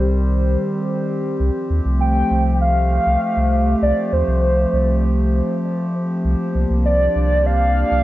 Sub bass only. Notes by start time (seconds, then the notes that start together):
Already playing: C2
1.40 C2
1.70 D#2
1.85 C2
2.31 C2
3.07 C2
3.37 C2
3.82 C2
4.13 D#2
4.28 C2
4.73 C2
6.25 C2
6.55 C2
6.70 C2
7.16 C2
7.91 C2